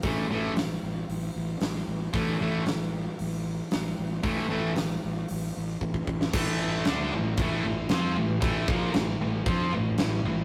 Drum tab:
CC |----------------|----------------|----------------|x---x---x---x---|
HH |o---o---o---o---|o---o---o---o---|o---o---o-------|----------------|
SD |----o-------oo--|----o-------o---|----o----------o|----o-------o---|
BD |o---------------|o---------------|o-----------ooo-|o-------o-------|

CC |x---x---x---x---|
HH |----------------|
SD |----o-------o---|
BD |o-o-----o-------|